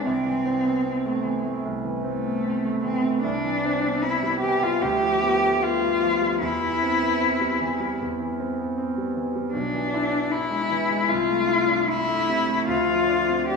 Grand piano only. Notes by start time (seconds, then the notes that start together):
0.05 C2
0.25 E3
0.46 C4
0.65 B3
0.85 C4
1.06 A3
1.25 E3
1.45 A3
1.65 C2
1.84 E3
2.04 C4
2.26 B3
2.45 C4
2.65 A3
2.84 E3
3.05 A3
3.24 C2
3.44 E3
3.65 C4
3.85 B3
4.04 C4
4.23 G3
4.43 E3
4.63 G3
4.82 D2
5.03 F3
5.23 B3
5.43 A3
5.62 B3
5.80 G3
6.01 F3
6.21 G3
6.41 E2
6.62 E3
6.82 C4
7.02 B3
7.20 C4
7.41 G3
7.61 E3
7.80 G3
8.01 E2
8.20 E3
8.40 C4
8.60 B3
8.78 C4
8.98 G3
9.17 E3
9.36 G3
9.53 B1
9.74 E3
9.94 E4
10.12 D4
10.33 E4
10.51 G#3
10.71 E3
10.90 G#3
11.09 C2
11.29 A3
11.48 E4
11.68 D4
11.88 E4
12.08 A3
12.29 C3
12.49 A3
12.68 D2
12.88 F3
13.08 D4
13.29 C4
13.49 D4